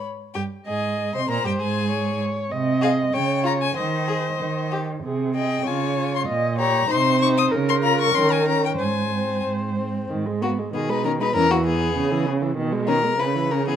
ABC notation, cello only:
X:1
M:2/4
L:1/16
Q:1/4=96
K:Ab
V:1 name="Cello" clef=bass
z2 G,,2 A,,3 C, | B,, G,, A,,4 z2 | C,4 D,4 | E,4 E,4 |
C,4 D,4 | B,,4 C,4 | D,4 E,4 | A,,4 A,,4 |
[K:G#m] G,,4 B,,4 | E,,4 C,4 | B,,4 C,4 |]